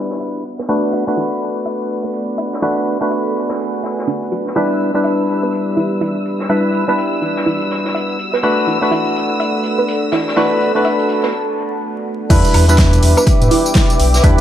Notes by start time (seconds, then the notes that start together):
Already playing: G3 D4 E4 G4 B4 D5 F#5 B5
0.11 snare
0.20 E5, closed hi-hat
0.34 closed hi-hat
0.45 A4, closed hi-hat
0.59 B4, snare
0.69 A3 D4 F#4 B4, closed hi-hat
0.93 E5, closed hi-hat
1.07 A3 D4 F#4 B4
1.17 E4, closed hi-hat
1.32 closed hi-hat
1.41 closed hi-hat
1.65 E5, closed hi-hat
1.90 closed hi-hat
2.04 B4
2.13 closed hi-hat
2.38 E5 G#5, closed hi-hat
2.53 snare
2.62 A3 D4 E4 F#4 B4, closed hi-hat
2.87 closed hi-hat
3.01 A3 D4 F#4 B4
3.11 E5, closed hi-hat
3.27 closed hi-hat
3.36 closed hi-hat
3.49 B4, snare
3.59 open hi-hat
3.74 closed hi-hat
3.83 E5, snare, closed hi-hat
3.98 snare
4.07 D4, closed hi-hat
4.22 closed hi-hat
4.32 F#4, closed hi-hat
4.47 snare
4.56 G3 D4 E4 G4 B4 E5 E6, closed hi-hat
4.80 closed hi-hat
4.94 G3 D4 E4 B4
5.04 E5, closed hi-hat
5.19 closed hi-hat
5.28 closed hi-hat
5.43 B4
5.52 closed hi-hat
5.77 E4, closed hi-hat
6.01 E4, closed hi-hat
6.25 closed hi-hat
6.40 snare
6.49 G3 D4 E4 B4 E5 F#5, closed hi-hat
6.73 closed hi-hat
6.88 G3 D4 E4 B4
6.98 closed hi-hat
7.13 closed hi-hat
7.22 E4, closed hi-hat
7.37 snare
7.46 E4, open hi-hat
7.62 closed hi-hat
7.71 snare, closed hi-hat
7.85 snare
7.95 E5, closed hi-hat
8.08 closed hi-hat
8.19 A4 D5, closed hi-hat
8.33 B4, snare
8.43 A3 D4 F#4 B4, closed hi-hat
8.67 E4, closed hi-hat
8.81 A3 D4 F#4 B4
8.91 E4, closed hi-hat
9.06 closed hi-hat
9.16 closed hi-hat
9.40 E5, closed hi-hat
9.63 closed hi-hat
9.79 B4
9.88 closed hi-hat
10.12 E4 A5, snare, closed hi-hat
10.27 snare
10.36 A3 D4 E4 F#4 B4, snare, closed hi-hat
10.61 closed hi-hat
10.75 A3 D4 F#4 B4
10.84 E5, closed hi-hat
10.99 closed hi-hat
11.09 closed hi-hat
11.23 B4, snare
12.30 E2 G3 D4 E4 B4 E5 G5 D6, kick, closed hi-hat, crash, tambourine
12.45 closed hi-hat, tambourine
12.54 E2, closed hi-hat, open hi-hat, high woodblock
12.68 G3 D4 E4 B4, closed hi-hat, tambourine
12.78 E5, kick, snare, closed hi-hat, tambourine
12.93 closed hi-hat, tambourine
13.03 E2, closed hi-hat, open hi-hat
13.17 B4, tambourine, high woodblock
13.26 kick, closed hi-hat, tambourine
13.41 A2, closed hi-hat, tambourine
13.51 E4, closed hi-hat, open hi-hat
13.66 tambourine
13.75 E4, kick, snare, closed hi-hat, tambourine
13.90 closed hi-hat, tambourine
13.99 B1, closed hi-hat, open hi-hat
14.14 snare, closed hi-hat, tambourine
14.23 E2 G3 D4 E4 B4 E5, kick, closed hi-hat, tambourine